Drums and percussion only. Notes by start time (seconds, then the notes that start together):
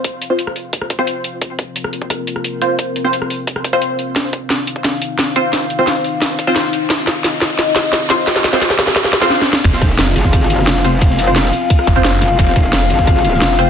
0.04 kick, closed hi-hat
0.22 closed hi-hat
0.39 closed hi-hat
0.47 cross-stick
0.56 open hi-hat
0.73 kick, closed hi-hat
0.82 cross-stick
0.90 kick, closed hi-hat
0.99 kick
1.07 closed hi-hat
1.24 closed hi-hat
1.42 kick, closed hi-hat
1.59 kick, closed hi-hat
1.76 closed hi-hat
1.84 cross-stick
1.93 closed hi-hat
2.02 kick
2.10 kick, cross-stick, closed hi-hat
2.27 closed hi-hat
2.36 cross-stick
2.44 closed hi-hat
2.62 closed hi-hat
2.79 kick, closed hi-hat
2.96 closed hi-hat
3.13 closed hi-hat
3.22 cross-stick
3.30 open hi-hat
3.47 kick, closed hi-hat
3.56 cross-stick
3.64 kick, closed hi-hat
3.73 kick
3.82 closed hi-hat
3.99 closed hi-hat
4.16 kick, snare, closed hi-hat
4.33 kick, closed hi-hat
4.50 snare, closed hi-hat
4.67 closed hi-hat
4.76 kick
4.84 kick, snare, closed hi-hat
5.02 closed hi-hat
5.19 snare, closed hi-hat
5.36 closed hi-hat
5.53 kick, snare, closed hi-hat
5.70 closed hi-hat
5.87 snare, closed hi-hat
6.04 open hi-hat
6.22 kick, snare, closed hi-hat
6.39 kick, closed hi-hat
6.47 kick
6.56 snare, closed hi-hat
6.73 closed hi-hat
6.90 kick, snare, closed hi-hat
7.07 kick, snare, closed hi-hat
7.24 snare, closed hi-hat
7.42 snare, closed hi-hat
7.50 kick
7.59 kick, snare, closed hi-hat
7.76 snare, closed hi-hat
7.93 snare, closed hi-hat
8.10 snare, closed hi-hat
8.27 kick, snare, closed hi-hat
8.36 snare
8.44 snare, closed hi-hat
8.53 snare
8.62 snare, closed hi-hat
8.70 snare
8.79 snare, open hi-hat
8.87 snare
8.96 kick, snare, closed hi-hat
9.04 snare
9.13 kick, snare, closed hi-hat
9.22 kick, snare
9.30 snare
9.42 snare
9.53 snare
9.64 kick, closed hi-hat, crash, ride
9.73 snare
9.82 kick, closed hi-hat, ride
9.98 snare, closed hi-hat, ride
10.07 cross-stick
10.16 closed hi-hat, ride
10.24 kick, snare
10.33 kick, cross-stick, closed hi-hat, ride
10.41 ride
10.50 closed hi-hat, ride
10.59 cross-stick, snare
10.67 snare, closed hi-hat, ride
10.84 snare, closed hi-hat, ride
11.02 kick, closed hi-hat, ride
11.10 snare
11.19 closed hi-hat, ride
11.36 snare, closed hi-hat, ride
11.44 cross-stick, snare
11.52 open hi-hat, ride
11.70 kick, closed hi-hat, ride
11.79 cross-stick
11.87 kick, closed hi-hat, ride
11.96 kick
12.04 snare, closed hi-hat, ride
12.13 ride
12.21 closed hi-hat, ride
12.39 kick, closed hi-hat, ride
12.47 snare
12.56 kick, closed hi-hat, ride
12.73 snare, closed hi-hat, ride
12.82 cross-stick
12.90 closed hi-hat, ride
12.98 kick, snare
13.07 kick, cross-stick, closed hi-hat, ride
13.16 ride
13.24 closed hi-hat, ride
13.33 cross-stick, snare
13.42 snare, closed hi-hat, ride
13.58 snare, closed hi-hat, ride